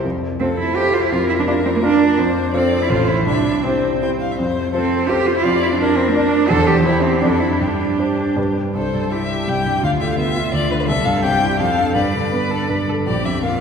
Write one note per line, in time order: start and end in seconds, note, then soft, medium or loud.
0.04 0.40 F2 soft
0.40 0.47 C4 medium
0.40 0.73 F4 soft
0.40 0.74 A4 soft
0.40 0.74 C5 soft
0.58 0.77 E4 medium
0.76 1.08 F4 soft
0.76 0.95 G4 medium
0.76 1.09 A4 soft
0.76 1.12 C5 medium
0.76 1.09 C5 soft
0.93 1.05 F4 medium
1.03 1.12 E4 medium
1.11 1.47 F2 medium
1.11 1.28 F4 medium
1.11 2.20 A#4 medium
1.29 1.32 E4 medium
1.39 1.43 D4 medium
1.47 1.54 D4 medium
1.47 1.80 F4 soft
1.47 1.80 A#4 soft
1.47 1.80 D5 soft
1.65 1.69 C4 medium
1.75 1.79 A#3 medium
1.83 2.18 D4 medium
1.83 2.15 F4 soft
1.83 2.15 A#4 medium
1.83 2.15 D5 medium
2.18 2.53 F2 medium
2.18 2.53 C5 medium
2.53 2.83 C4 medium
2.53 2.86 F4 soft
2.53 2.87 A4 soft
2.53 2.87 C5 medium
2.53 2.91 D5 medium
2.82 2.92 E4 medium
2.90 3.26 A1 soft
2.90 3.23 F4 soft
2.90 3.09 F4 medium
2.90 3.23 A4 soft
2.90 3.26 C5 medium
2.90 3.24 C5 soft
3.08 3.25 E4 medium
3.26 3.63 C2 soft
3.26 3.65 D4 medium
3.26 3.60 E5 soft
3.63 4.20 C4 soft
3.63 3.98 E4 soft
3.63 3.99 G4 soft
3.63 4.00 C5 soft
3.63 3.99 C5 soft
4.02 4.35 E4 soft
4.02 4.35 G4 soft
4.02 4.35 C5 soft
4.02 4.10 G5 medium
4.21 4.33 F5 soft
4.31 4.38 E5 soft
4.39 4.74 F2 soft
4.39 4.72 C5 medium
4.74 5.11 C4 medium
4.74 5.06 F4 soft
4.74 5.11 A4 medium
4.74 5.07 A4 soft
4.74 5.07 C5 soft
5.09 5.41 F4 soft
5.09 5.28 G4 medium
5.09 5.42 A4 soft
5.09 5.46 C5 medium
5.09 5.42 C5 soft
5.26 5.35 F4 medium
5.36 5.45 E4 medium
5.43 5.79 F2 medium
5.43 5.62 F4 medium
5.43 5.81 D5 medium
5.62 5.66 E4 medium
5.72 5.79 D4 medium
5.80 5.99 D4 medium
5.80 6.12 D4 soft
5.80 6.13 A#4 soft
5.80 6.49 A#4 medium
5.80 6.13 D5 soft
5.97 6.10 C4 medium
6.08 6.14 A#3 medium
6.15 6.51 D4 medium
6.15 6.47 D4 soft
6.15 6.47 A#4 soft
6.15 6.48 D5 medium
6.49 6.85 E2 medium
6.49 6.68 A4 medium
6.49 6.87 C5 medium
6.67 6.85 G4 medium
6.85 7.18 E4 soft
6.85 7.04 E4 medium
6.85 7.18 G4 soft
6.85 7.22 G4 medium
6.85 7.19 C5 soft
7.02 7.22 C4 medium
7.21 7.59 F2 medium
7.21 7.41 D4 medium
7.21 7.56 D4 soft
7.21 7.57 A4 soft
7.21 7.60 A4 medium
7.21 7.57 D5 soft
7.40 7.51 E4 medium
7.52 7.61 E4 soft
7.60 7.98 G2 soft
7.60 8.37 D4 medium
7.60 8.55 G4 soft
7.99 8.33 D4 soft
7.99 8.33 G4 soft
7.99 8.34 C5 soft
8.36 8.74 G2 soft
8.36 8.71 D4 soft
8.36 8.72 G4 soft
8.36 8.72 B4 soft
8.75 9.46 C2 soft
8.75 9.13 A4 soft
8.75 9.10 C5 soft
8.93 9.22 G2 soft
9.11 9.40 E4 soft
9.11 9.84 G4 soft
9.11 9.50 E5 medium
9.30 9.58 G4 soft
9.48 9.82 C2 soft
9.48 9.83 G5 medium
9.65 9.83 G2 soft
9.83 10.52 D2 soft
9.83 10.90 F4 soft
9.83 9.91 F5 medium
10.01 10.29 D3 soft
10.01 10.10 E5 medium
10.12 10.15 F5 medium
10.18 10.46 B3 soft
10.18 10.53 E5 medium
10.35 10.64 F4 soft
10.53 10.88 D2 soft
10.53 10.71 D5 medium
10.71 10.89 D3 soft
10.71 10.75 B4 medium
10.80 10.83 B4 medium
10.87 11.57 C2 soft
10.87 11.25 A4 medium
10.87 11.06 E5 medium
11.04 11.34 G2 soft
11.04 11.22 F5 medium
11.23 11.52 C4 soft
11.23 11.61 G4 soft
11.23 11.59 G5 medium
11.41 11.59 E4 soft
11.59 11.95 F2 medium
11.59 11.97 A4 medium
11.59 11.95 F5 medium
11.77 11.94 D4 soft
11.77 11.94 A4 soft
11.95 12.68 G2 soft
11.95 12.29 B4 soft
11.95 12.86 D5 medium
12.14 12.43 D3 soft
12.32 12.62 B3 soft
12.32 12.52 B4 medium
12.50 12.80 D4 soft
12.50 12.69 A4 soft
12.69 13.06 G2 soft
12.69 12.77 B4 soft
12.88 13.07 D3 soft
12.88 12.96 A4 soft
13.07 13.60 A#1 soft
13.07 13.41 G4 medium
13.07 13.26 D5 medium
13.25 13.54 F2 soft
13.25 13.42 E5 medium
13.43 13.60 A#3 soft
13.43 13.60 F4 soft
13.43 13.60 F5 medium